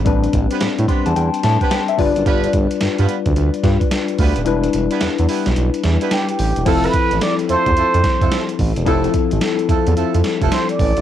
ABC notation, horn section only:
X:1
M:4/4
L:1/16
Q:"Swing 16ths" 1/4=109
K:Flyd
V:1 name="Horn section"
z3 [B,CDGB] z2 [B,CDGB] z4 [B,CDGB] z4 | [B,DFGB]2 z3 [B,DFGB] z8 [B,DFGB] z | z3 [B,DEGB] z2 [B,DEGB] z4 [B,DEGB] z4 | [A,CEFA]2 z4 [A,CEFA] z [A,CEFA] z2 [A,CEFA] z4 |
[A,CEFA]2 z4 [A,CEFA] z [A,CEFA] z2 [A,CEFA] z4 |]